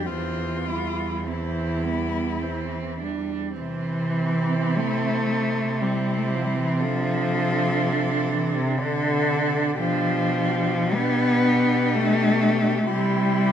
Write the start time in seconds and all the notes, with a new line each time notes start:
Already playing: F2
0.06 E2 E3 C4 F4
0.66 G3 E4
1.26 E3 C4 E4
1.82 G3 B3
2.42 E3 C4
3.00 G3 D4
3.59 C3 E3 C4 E4
4.76 A3
5.80 G3 C4 E4
6.17 A3
6.28 G3
6.37 F3
6.44 G3
6.54 E3
6.79 F3 D4 A4
8.31 E3
8.55 C3
8.79 D3 D4 A4
9.78 B2 F3 D4 G4
10.93 B3 D4 G4
11.95 A3
12.91 C3 G3 E4 G4